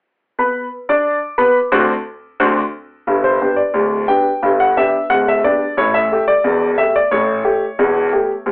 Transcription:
grand piano
0.38 B3 B4 B5
0.89 D4 D5 D6
1.38 B3 B4 B5
1.72 D2 C4 D4 F#4
2.40 D2 C4 D4 F#4
3.07 G1 G2
3.24 C5
3.41 B3 D4 G4
3.56 D5
3.74 D1 D2
4.08 B3 D4 G4 G5
4.43 G1 G2
4.60 F#5
4.77 B3 D4 G4 E5
5.10 D1 D2 F#5
5.28 E5
5.44 B3 D4 G4 D5
5.77 A1 A2 C#5
5.94 E5
6.12 A3 G4
6.28 D5
6.44 E1 E2
6.78 A3 G4 E5
6.96 D5
7.11 A1 A2 C#5
7.45 A3 G4
7.79 E1 E2
8.13 A3 G4
8.46 D1 D2

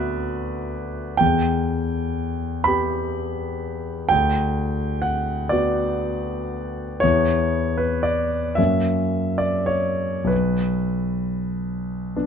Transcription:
grand piano
Already playing: D2 B3 F#4 B4 D5 E5 F#5
1.17 E2 G5
2.64 B3 G4 B5
4.09 D2 G5
5.02 F#5
5.49 B3 F#4 D5
7.00 E2 B3 E4 C#5
7.77 B4
8.03 D5
8.55 F#2 A#3 C#4 E5
9.38 D5
9.66 C#5
10.24 B1 B4
12.16 B3 D4

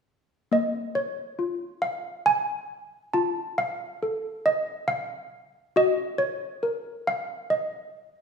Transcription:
handbells
0.52 A#3 D#5
0.95 C#5
1.39 F4
1.82 F5
2.26 G#5
3.14 F4 A5
3.58 F5
4.03 A4
4.46 D#5
4.88 F5
5.76 F#4 D#5
6.18 C#5
6.63 A#4
7.07 F5
7.50 D#5

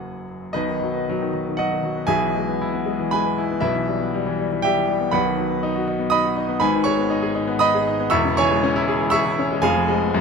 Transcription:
grand piano
Already playing: F#1 F#2 C#3 F#3 A#3 F#4 G#4 F#5 G#5
0.53 B1 B2 D#4 B4 D#5
0.69 D#3
0.82 F#3
0.95 B3
1.09 F#3
1.22 D#3
1.34 F#3
1.47 D#3
1.57 F#3 F#4 D#5 F#5
1.72 D#3
1.83 F#3
1.97 B3
2.07 B1 B2 G#4 E5 G#5
2.21 E3
2.35 G#3
2.48 B3
2.61 E4
2.73 B3
2.86 G#3
2.99 E3
3.11 G#3 B4 G#5 B5
3.26 B3
3.38 E4
3.51 B3
3.60 B1 B2 E4 B4 E5
3.75 E3
3.88 G3
4.00 B3
4.14 G3
4.26 E3
4.39 G3
4.52 E3
4.62 G3 G4 E5 G5
4.77 E3
4.89 G3
5.01 B3
5.11 B1 B2 B4 F#5 B5
5.25 D#3
5.38 F#3
5.50 B3
5.63 D#4
5.75 F#4
5.88 D#4
5.99 B3
6.10 D#4 D#5 B5 D#6
6.25 F#4
6.36 D#4
6.49 B3
6.60 G#1 G#2 B4 G#5 B5
6.75 D#3
6.84 G#3 C#5 C#6
6.99 B3
7.10 D#4
7.22 G#4
7.35 D#4
7.48 B3
7.59 D#4 D#5 B5 D#6
7.74 G#4
7.87 D#4
8.00 B3
8.10 E1 E2 E5 C#6 E6
8.25 C#3
8.37 E3 C#5 G#5 C#6
8.51 G#3
8.64 C#4
8.76 E4
8.88 G#4
9.00 E4
9.10 G#4 E5 C#6 E6
9.26 E4
9.39 C#4
9.51 G#3
9.62 F1 F2 G#4 F5 G#5
9.77 F3
9.88 G#3
10.02 B3
10.14 F#2

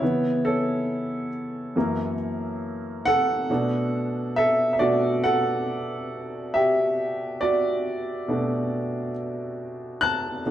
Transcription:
upright piano
Already playing: E4 C#5
0.02 C#3 E3 B3
0.45 C#4 A4
1.76 F#2 E3 A#3
3.05 A4 F#5
3.50 B2 A3 D4
4.36 A4 E5
4.73 E5
4.79 B2 A3 D4 F#4 D5
5.24 A4 F#5
6.54 G4 E5
7.41 F#4 D5
8.28 B2 A3 D4
10.01 A5 F#6
10.46 B2 A3 D4

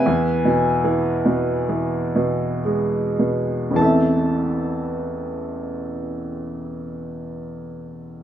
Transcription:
grand piano
Already playing: B4 E5 G#5
0.06 E2
0.45 B2
0.84 E3
1.26 B2
1.69 E3
2.15 B2
2.65 G#3
3.19 B2
3.71 A1 E2
3.76 E3 C4 A5
3.81 A4 E5

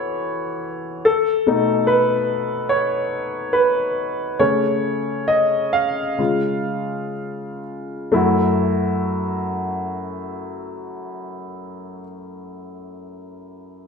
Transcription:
grand piano
Already playing: B4 C#5
1.05 A4
1.47 B2 A3 D#4
1.87 B4
2.69 C#5
3.53 B4
4.39 C#3 A3 C#4 C#5
5.28 D#5
5.73 F5
6.18 C#3 G#3 F4
8.12 F#2 A3 E4
8.16 F#4

